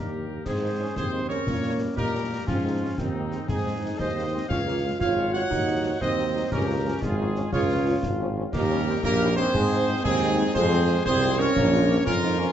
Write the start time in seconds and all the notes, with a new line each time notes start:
Already playing: D#2 D#3 G3 A#3 G4 A#4
0.45 G#2 C4 G#4 C5, concert bass drum, snare, crash
0.62 D#3 G#3 C4 D#4
0.79 D#3 G#3 C4 C#4
0.96 D#2 C4 G#4 C5, concert bass drum, snare
1.13 D#3 G#3 C4
1.29 D#3 G#3 C4 C#4 A#4 C#5, snare
1.46 A#2 A#3, concert bass drum, snare
1.63 G3 A#3
1.80 G3 A#3
1.97 A#2 A#3 D#4 G4 A#4, concert bass drum, snare
2.14 G3 A#3 C#4
2.30 G3 A#3
2.47 G#2 F3 C4 C#4 F4, concert bass drum, snare, crash
2.64 G#3 C4 D#4
2.81 G#3 C4 C#4
2.97 D#2 D#3 C4 D#4, concert bass drum, snare
3.14 G#3 A#3 C4
3.32 G#3 C4, snare
3.48 G#2 G#3 D#4 G#4, concert bass drum, snare
3.66 G#3 C4
3.83 G#3 C4
3.99 D#2 G#3 D#4 C5 D#5, concert bass drum, snare
4.17 G#3 A#3 C4
4.33 G#3 C4
4.49 C#2 C#4 F4 C#5 F5, concert bass drum, snare, crash
4.66 G#3 A#3 C#4 F4
4.83 G#3 C#4 F4
4.99 G#1 F4 C#5 F5, concert bass drum, snare
5.17 G#3 C#4 F4
5.33 G#3 C#4 F4 F#4 C#5 F#5, snare
5.50 D#2 D#4, concert bass drum, snare
5.67 F#3 C4 D#4
5.84 F#3 C4 D#4
6.00 D#2 C4 D#4 C5 D#5, concert bass drum, snare
6.18 F#3 C4 D#4
6.34 F#3 C4 D#4
6.51 C#2 A#3 C#4 G4 A#4, concert bass drum, snare, crash
6.68 F3 C#4 D#4 F4
6.85 F3 C#4 F4
7.01 G#1 G#3 F4 G#4, concert bass drum, snare
7.18 F3 C#4 D#4 F4
7.36 F3 C#4 F4, snare
7.52 C#2 C#4 F4 G#4 C#5, concert bass drum, snare
7.69 F3 C#4 F4
7.86 F3 C#4 F4
8.02 G#1, concert bass drum, snare
8.20 F3 C#4 F4
8.37 F3 C#4 F4
8.52 D#2 A#3 D#4 G4 A#4, concert bass drum, snare, crash
8.71 G3 C#4 D#4
8.87 G3 C4 C#4 D#4
9.03 A#1 A#3 G4 A#4, concert bass drum, snare
9.21 G3 C#4 D#4
9.36 G3 C4 C#4 D#4 G#4 C5, snare
9.54 G#2 G#3, concert bass drum, snare
9.71 G#3 C4 D#4
9.88 G#3 C4 D#4
10.03 D#2 G#3 C4 D#4 G#4, concert bass drum, snare
10.21 G#3 C4 D#4
10.38 G#3 C4 D#4
10.54 F2 G#3 C4 G#4 C5, concert bass drum, snare, crash
10.72 G#3 C4 F4
10.88 G#3 C4 F4
11.05 C2 C4 G#4 C5, concert bass drum, snare
11.23 G#3 C4 F4
11.39 G#3 C4 C#4 F4 A#4 C#5, snare
11.55 A#1 A#3, concert bass drum, snare
11.72 F3 G#3 A#3 F4
11.88 F3 A#3 F4
12.05 F2 A#3 C#4 F4 A#4, concert bass drum, snare
12.23 F3 A#3 D#4 F4
12.38 F3 A#3 C#4 F4